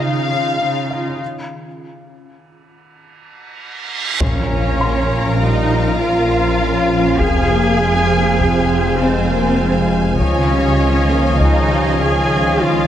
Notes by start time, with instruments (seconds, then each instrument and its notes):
Already playing: ambient pad D#3 C#4 F4 G#4, felt piano A#5
0.00 cello section C#3, viola section D#4 F4, violin section F5
0.30 viola section D#4 F4
0.60 cello section C#3, viola section D#4 F4
0.91 viola section D#4 F4, felt piano F5
1.21 reverse cymbal
4.20 detuned saw bass A#1, double bass section A#1, trombone section A#2 F3, ambient pad F3 C#4 F4 A#4, cello section C#4, viola section A#4 F5, violin section C#5 F5 A#5, taiko, impact
4.81 felt piano C6
5.41 french horn section G3, cello section D#4, violin section D#5
6.00 french horn section F3, cello section F4, violin section F5
6.61 french horn section C#4
7.20 detuned saw bass F1, double bass section F2, trombone section C3, ambient pad C4 G#5, french horn section C4, cello section G#4, viola section C5, violin section G#5, taiko
7.51 french horn section A#3
7.80 french horn section G#3
8.11 french horn section A#3
8.40 french horn section C4, taiko
9.00 french horn section G#3, cello section C4, violin section C5
9.30 french horn section A#3
9.60 french horn section G#3
10.21 detuned saw bass C#2, double bass section C#2, ambient pad D#3 C#4 F4, trombone section D#3 F3, french horn section F3, cello section C#4, violin section C#5 F5, viola section C#5 D#5, taiko
10.51 french horn section G3
10.80 french horn section G#3
11.11 french horn section A#3
11.40 french horn section G#3, cello section D#4, violin section D#5, taiko
11.71 french horn section G3
12.00 french horn section F3, cello section G#4, violin section G#5
12.60 french horn section G#3, cello section F4, felt piano F4, violin section F5